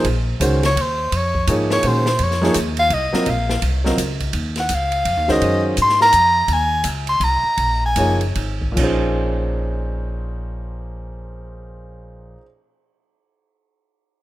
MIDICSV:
0, 0, Header, 1, 6, 480
1, 0, Start_track
1, 0, Key_signature, -5, "minor"
1, 0, Tempo, 357569
1, 64, Time_signature, 3, 2, 24, 8
1, 9184, Tempo, 372671
1, 10624, Tempo, 403497
1, 11584, Tempo, 420757
1, 17811, End_track
2, 0, Start_track
2, 0, Title_t, "Soprano saxophone"
2, 0, Program_c, 0, 64
2, 888, Note_on_c, 0, 73, 87
2, 1089, Note_on_c, 0, 72, 86
2, 1109, Note_off_c, 0, 73, 0
2, 1563, Note_on_c, 0, 73, 79
2, 1583, Note_off_c, 0, 72, 0
2, 2013, Note_off_c, 0, 73, 0
2, 2318, Note_on_c, 0, 73, 87
2, 2513, Note_on_c, 0, 72, 81
2, 2533, Note_off_c, 0, 73, 0
2, 2997, Note_on_c, 0, 73, 77
2, 3017, Note_off_c, 0, 72, 0
2, 3450, Note_off_c, 0, 73, 0
2, 3751, Note_on_c, 0, 77, 107
2, 3939, Note_on_c, 0, 75, 91
2, 3959, Note_off_c, 0, 77, 0
2, 4422, Note_on_c, 0, 77, 75
2, 4442, Note_off_c, 0, 75, 0
2, 4882, Note_off_c, 0, 77, 0
2, 6170, Note_on_c, 0, 78, 83
2, 6372, Note_on_c, 0, 77, 91
2, 6392, Note_off_c, 0, 78, 0
2, 7130, Note_on_c, 0, 75, 87
2, 7150, Note_off_c, 0, 77, 0
2, 7588, Note_off_c, 0, 75, 0
2, 7814, Note_on_c, 0, 84, 99
2, 8062, Note_off_c, 0, 84, 0
2, 8080, Note_on_c, 0, 82, 105
2, 8770, Note_on_c, 0, 80, 89
2, 8790, Note_off_c, 0, 82, 0
2, 9217, Note_off_c, 0, 80, 0
2, 9506, Note_on_c, 0, 84, 95
2, 9698, Note_on_c, 0, 82, 88
2, 9717, Note_off_c, 0, 84, 0
2, 10463, Note_off_c, 0, 82, 0
2, 10492, Note_on_c, 0, 80, 86
2, 10912, Note_off_c, 0, 80, 0
2, 17811, End_track
3, 0, Start_track
3, 0, Title_t, "Grand piano"
3, 0, Program_c, 1, 0
3, 531, Note_on_c, 1, 51, 62
3, 541, Note_on_c, 1, 56, 60
3, 548, Note_on_c, 1, 61, 58
3, 558, Note_on_c, 1, 66, 57
3, 562, Note_on_c, 1, 72, 73
3, 809, Note_off_c, 1, 51, 0
3, 814, Note_off_c, 1, 56, 0
3, 818, Note_off_c, 1, 61, 0
3, 823, Note_off_c, 1, 66, 0
3, 825, Note_off_c, 1, 72, 0
3, 1980, Note_on_c, 1, 53, 60
3, 1992, Note_on_c, 1, 58, 55
3, 1997, Note_on_c, 1, 63, 57
3, 1999, Note_on_c, 1, 68, 55
3, 2009, Note_on_c, 1, 73, 67
3, 2444, Note_off_c, 1, 53, 0
3, 2449, Note_off_c, 1, 58, 0
3, 2452, Note_off_c, 1, 63, 0
3, 2454, Note_off_c, 1, 68, 0
3, 2458, Note_off_c, 1, 73, 0
3, 2461, Note_on_c, 1, 51, 58
3, 2465, Note_on_c, 1, 56, 50
3, 2473, Note_on_c, 1, 61, 50
3, 2481, Note_on_c, 1, 66, 54
3, 2486, Note_on_c, 1, 72, 62
3, 2734, Note_off_c, 1, 51, 0
3, 2736, Note_off_c, 1, 56, 0
3, 2740, Note_off_c, 1, 61, 0
3, 2744, Note_off_c, 1, 66, 0
3, 2747, Note_off_c, 1, 72, 0
3, 3238, Note_on_c, 1, 53, 78
3, 3242, Note_on_c, 1, 58, 68
3, 3255, Note_on_c, 1, 63, 72
3, 3261, Note_on_c, 1, 68, 73
3, 3266, Note_on_c, 1, 73, 85
3, 3402, Note_off_c, 1, 53, 0
3, 3404, Note_off_c, 1, 58, 0
3, 3410, Note_off_c, 1, 63, 0
3, 3413, Note_off_c, 1, 68, 0
3, 3416, Note_off_c, 1, 73, 0
3, 4196, Note_on_c, 1, 54, 71
3, 4203, Note_on_c, 1, 60, 59
3, 4209, Note_on_c, 1, 65, 66
3, 4218, Note_on_c, 1, 70, 59
3, 4223, Note_on_c, 1, 75, 73
3, 4361, Note_off_c, 1, 54, 0
3, 4364, Note_off_c, 1, 60, 0
3, 4367, Note_off_c, 1, 65, 0
3, 4372, Note_off_c, 1, 70, 0
3, 4374, Note_off_c, 1, 75, 0
3, 5159, Note_on_c, 1, 54, 68
3, 5167, Note_on_c, 1, 60, 58
3, 5171, Note_on_c, 1, 65, 56
3, 5179, Note_on_c, 1, 70, 58
3, 5183, Note_on_c, 1, 75, 72
3, 5322, Note_off_c, 1, 54, 0
3, 5326, Note_off_c, 1, 60, 0
3, 5328, Note_off_c, 1, 65, 0
3, 5332, Note_off_c, 1, 70, 0
3, 5334, Note_off_c, 1, 75, 0
3, 7084, Note_on_c, 1, 51, 71
3, 7089, Note_on_c, 1, 56, 62
3, 7096, Note_on_c, 1, 61, 61
3, 7101, Note_on_c, 1, 66, 63
3, 7106, Note_on_c, 1, 72, 76
3, 7707, Note_off_c, 1, 51, 0
3, 7709, Note_off_c, 1, 56, 0
3, 7712, Note_off_c, 1, 61, 0
3, 7715, Note_off_c, 1, 66, 0
3, 7717, Note_off_c, 1, 72, 0
3, 10628, Note_on_c, 1, 53, 61
3, 10635, Note_on_c, 1, 58, 53
3, 10639, Note_on_c, 1, 63, 53
3, 10646, Note_on_c, 1, 68, 55
3, 10649, Note_on_c, 1, 73, 67
3, 10891, Note_off_c, 1, 53, 0
3, 10894, Note_off_c, 1, 58, 0
3, 10896, Note_off_c, 1, 63, 0
3, 10900, Note_off_c, 1, 68, 0
3, 10901, Note_off_c, 1, 73, 0
3, 11527, Note_on_c, 1, 46, 60
3, 11555, Note_on_c, 1, 53, 55
3, 11582, Note_on_c, 1, 61, 58
3, 11612, Note_on_c, 1, 63, 53
3, 11640, Note_on_c, 1, 68, 55
3, 11663, Note_on_c, 1, 72, 65
3, 15659, Note_off_c, 1, 46, 0
3, 15686, Note_off_c, 1, 53, 0
3, 15712, Note_off_c, 1, 61, 0
3, 15742, Note_off_c, 1, 63, 0
3, 15770, Note_off_c, 1, 68, 0
3, 15793, Note_off_c, 1, 72, 0
3, 17811, End_track
4, 0, Start_track
4, 0, Title_t, "Upright bass"
4, 0, Program_c, 2, 32
4, 60, Note_on_c, 2, 34, 80
4, 527, Note_off_c, 2, 34, 0
4, 538, Note_on_c, 2, 37, 88
4, 1006, Note_off_c, 2, 37, 0
4, 1021, Note_on_c, 2, 39, 89
4, 1488, Note_off_c, 2, 39, 0
4, 1503, Note_on_c, 2, 41, 80
4, 1969, Note_off_c, 2, 41, 0
4, 1981, Note_on_c, 2, 44, 94
4, 2447, Note_off_c, 2, 44, 0
4, 2468, Note_on_c, 2, 46, 85
4, 2931, Note_off_c, 2, 46, 0
4, 2948, Note_on_c, 2, 41, 80
4, 3411, Note_off_c, 2, 41, 0
4, 3425, Note_on_c, 2, 39, 90
4, 3889, Note_off_c, 2, 39, 0
4, 3896, Note_on_c, 2, 36, 89
4, 4180, Note_off_c, 2, 36, 0
4, 4387, Note_on_c, 2, 34, 83
4, 4850, Note_off_c, 2, 34, 0
4, 4861, Note_on_c, 2, 36, 93
4, 5328, Note_off_c, 2, 36, 0
4, 5338, Note_on_c, 2, 37, 83
4, 5806, Note_off_c, 2, 37, 0
4, 5818, Note_on_c, 2, 39, 84
4, 6286, Note_off_c, 2, 39, 0
4, 6303, Note_on_c, 2, 37, 88
4, 6769, Note_off_c, 2, 37, 0
4, 6784, Note_on_c, 2, 41, 80
4, 6939, Note_off_c, 2, 41, 0
4, 6939, Note_on_c, 2, 39, 50
4, 7093, Note_off_c, 2, 39, 0
4, 7101, Note_on_c, 2, 37, 60
4, 7251, Note_off_c, 2, 37, 0
4, 7265, Note_on_c, 2, 42, 75
4, 7730, Note_off_c, 2, 42, 0
4, 7754, Note_on_c, 2, 44, 84
4, 8214, Note_off_c, 2, 44, 0
4, 8230, Note_on_c, 2, 41, 82
4, 8692, Note_off_c, 2, 41, 0
4, 8700, Note_on_c, 2, 39, 87
4, 9169, Note_off_c, 2, 39, 0
4, 9183, Note_on_c, 2, 37, 83
4, 9639, Note_off_c, 2, 37, 0
4, 9647, Note_on_c, 2, 36, 82
4, 9930, Note_off_c, 2, 36, 0
4, 10129, Note_on_c, 2, 34, 76
4, 10608, Note_off_c, 2, 34, 0
4, 10624, Note_on_c, 2, 30, 86
4, 11081, Note_off_c, 2, 30, 0
4, 11096, Note_on_c, 2, 32, 79
4, 11571, Note_off_c, 2, 32, 0
4, 11586, Note_on_c, 2, 34, 82
4, 15671, Note_off_c, 2, 34, 0
4, 17811, End_track
5, 0, Start_track
5, 0, Title_t, "Muted upright bass strokes"
5, 4209, Note_on_c, 9, 29, 36
5, 4343, Note_off_c, 9, 29, 0
5, 9947, Note_on_c, 9, 29, 35
5, 10076, Note_off_c, 9, 29, 0
5, 17811, End_track
6, 0, Start_track
6, 0, Title_t, "Drums"
6, 61, Note_on_c, 9, 51, 56
6, 195, Note_off_c, 9, 51, 0
6, 546, Note_on_c, 9, 44, 56
6, 546, Note_on_c, 9, 51, 66
6, 680, Note_off_c, 9, 44, 0
6, 680, Note_off_c, 9, 51, 0
6, 848, Note_on_c, 9, 51, 43
6, 854, Note_on_c, 9, 38, 52
6, 983, Note_off_c, 9, 51, 0
6, 988, Note_off_c, 9, 38, 0
6, 1035, Note_on_c, 9, 51, 58
6, 1169, Note_off_c, 9, 51, 0
6, 1506, Note_on_c, 9, 51, 60
6, 1641, Note_off_c, 9, 51, 0
6, 1809, Note_on_c, 9, 36, 54
6, 1943, Note_off_c, 9, 36, 0
6, 1979, Note_on_c, 9, 44, 50
6, 1979, Note_on_c, 9, 51, 68
6, 2113, Note_off_c, 9, 44, 0
6, 2113, Note_off_c, 9, 51, 0
6, 2288, Note_on_c, 9, 38, 57
6, 2422, Note_off_c, 9, 38, 0
6, 2454, Note_on_c, 9, 51, 58
6, 2588, Note_off_c, 9, 51, 0
6, 2765, Note_on_c, 9, 38, 52
6, 2899, Note_off_c, 9, 38, 0
6, 2936, Note_on_c, 9, 51, 55
6, 3070, Note_off_c, 9, 51, 0
6, 3100, Note_on_c, 9, 38, 29
6, 3234, Note_off_c, 9, 38, 0
6, 3266, Note_on_c, 9, 38, 41
6, 3401, Note_off_c, 9, 38, 0
6, 3413, Note_on_c, 9, 44, 65
6, 3413, Note_on_c, 9, 51, 66
6, 3548, Note_off_c, 9, 44, 0
6, 3548, Note_off_c, 9, 51, 0
6, 3716, Note_on_c, 9, 51, 45
6, 3850, Note_off_c, 9, 51, 0
6, 3897, Note_on_c, 9, 51, 55
6, 4031, Note_off_c, 9, 51, 0
6, 4208, Note_on_c, 9, 38, 49
6, 4342, Note_off_c, 9, 38, 0
6, 4376, Note_on_c, 9, 51, 56
6, 4510, Note_off_c, 9, 51, 0
6, 4691, Note_on_c, 9, 38, 51
6, 4825, Note_off_c, 9, 38, 0
6, 4859, Note_on_c, 9, 51, 58
6, 4993, Note_off_c, 9, 51, 0
6, 5176, Note_on_c, 9, 38, 45
6, 5310, Note_off_c, 9, 38, 0
6, 5344, Note_on_c, 9, 44, 52
6, 5344, Note_on_c, 9, 51, 62
6, 5478, Note_off_c, 9, 44, 0
6, 5478, Note_off_c, 9, 51, 0
6, 5644, Note_on_c, 9, 51, 44
6, 5645, Note_on_c, 9, 36, 43
6, 5778, Note_off_c, 9, 51, 0
6, 5779, Note_off_c, 9, 36, 0
6, 5814, Note_on_c, 9, 51, 58
6, 5948, Note_off_c, 9, 51, 0
6, 6116, Note_on_c, 9, 51, 42
6, 6122, Note_on_c, 9, 38, 31
6, 6251, Note_off_c, 9, 51, 0
6, 6256, Note_off_c, 9, 38, 0
6, 6293, Note_on_c, 9, 44, 50
6, 6293, Note_on_c, 9, 51, 66
6, 6427, Note_off_c, 9, 44, 0
6, 6427, Note_off_c, 9, 51, 0
6, 6601, Note_on_c, 9, 51, 44
6, 6735, Note_off_c, 9, 51, 0
6, 6783, Note_on_c, 9, 51, 59
6, 6917, Note_off_c, 9, 51, 0
6, 7093, Note_on_c, 9, 38, 39
6, 7227, Note_off_c, 9, 38, 0
6, 7270, Note_on_c, 9, 51, 53
6, 7404, Note_off_c, 9, 51, 0
6, 7743, Note_on_c, 9, 44, 56
6, 7743, Note_on_c, 9, 51, 58
6, 7878, Note_off_c, 9, 44, 0
6, 7878, Note_off_c, 9, 51, 0
6, 7908, Note_on_c, 9, 38, 28
6, 8042, Note_off_c, 9, 38, 0
6, 8064, Note_on_c, 9, 38, 42
6, 8199, Note_off_c, 9, 38, 0
6, 8222, Note_on_c, 9, 44, 50
6, 8222, Note_on_c, 9, 51, 59
6, 8357, Note_off_c, 9, 44, 0
6, 8357, Note_off_c, 9, 51, 0
6, 8700, Note_on_c, 9, 51, 54
6, 8835, Note_off_c, 9, 51, 0
6, 9178, Note_on_c, 9, 44, 53
6, 9178, Note_on_c, 9, 51, 65
6, 9307, Note_off_c, 9, 44, 0
6, 9307, Note_off_c, 9, 51, 0
6, 9479, Note_on_c, 9, 51, 42
6, 9607, Note_off_c, 9, 51, 0
6, 9655, Note_on_c, 9, 51, 53
6, 9783, Note_off_c, 9, 51, 0
6, 10129, Note_on_c, 9, 51, 54
6, 10258, Note_off_c, 9, 51, 0
6, 10622, Note_on_c, 9, 44, 47
6, 10622, Note_on_c, 9, 51, 67
6, 10741, Note_off_c, 9, 44, 0
6, 10741, Note_off_c, 9, 51, 0
6, 10919, Note_on_c, 9, 51, 40
6, 11038, Note_off_c, 9, 51, 0
6, 11094, Note_on_c, 9, 51, 57
6, 11213, Note_off_c, 9, 51, 0
6, 11404, Note_on_c, 9, 36, 63
6, 11523, Note_off_c, 9, 36, 0
6, 11586, Note_on_c, 9, 49, 73
6, 11587, Note_on_c, 9, 36, 87
6, 11700, Note_off_c, 9, 49, 0
6, 11701, Note_off_c, 9, 36, 0
6, 17811, End_track
0, 0, End_of_file